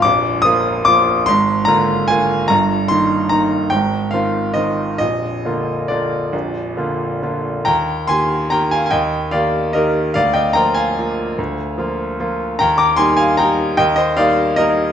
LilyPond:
<<
  \new Staff \with { instrumentName = "Grand piano" } { \time 3/4 \key ees \major \tempo 4 = 146 << { d'''4 ees'''4 d'''4 | c'''4 bes''4 aes''4 | bes''4 c'''4 bes''4 | g''4 f''4 ees''4 |
ees''2 d''4~ | d''2~ d''8 r8 | bes''4 c'''4 \tuplet 3/2 { bes''8. aes''8 aes''16 } | g''4 f''4 ees''4 |
f''8 g''8 bes''8 aes''4.~ | aes''2~ aes''8 r8 | bes''8 d'''8 c'''8 aes''8 bes''4 | g''8 ees''8 f''4 ees''4 | } \\ { r2. | r2. | r2. | r2. |
r2. | r2. | g''4 aes''4 g''8 f''8 | ees''4 d''4 bes'4 |
d''8 ees''8 g''8 f''4.~ | f''2~ f''8 r8 | g''8 bes''8 aes''8 f''8 g''4 | ees''8 c''8 d''4 bes'4 | } >> }
  \new Staff \with { instrumentName = "Grand piano" } { \time 3/4 \key ees \major <bes,,, bes,,>4 <f bes f'>4 <f bes f'>4 | <aes,, aes,>4 <d bes f'>4 <d bes f'>4 | <g,, g,>4 <ees bes ees'>4 <ees bes ees'>4 | <aes,, aes,>4 <ees c' f'>4 <ees c' f'>4 |
<bes,,, bes,,>4 <d bes f'>4 <d bes f'>4 | <bes,,, bes,,>4 <d bes f'>4 <d bes f'>4 | ees,4 <ees bes g'>4 <ees bes g'>4 | ees,4 <ees bes g'>4 <ees bes g'>4 |
d,4 <f bes f'>4 <f bes f'>4 | d,4 <f bes f'>4 <f bes f'>4 | ees,4 <g bes ees'>4 <g bes ees'>4 | ees,4 <g bes ees'>4 <g bes ees'>4 | }
>>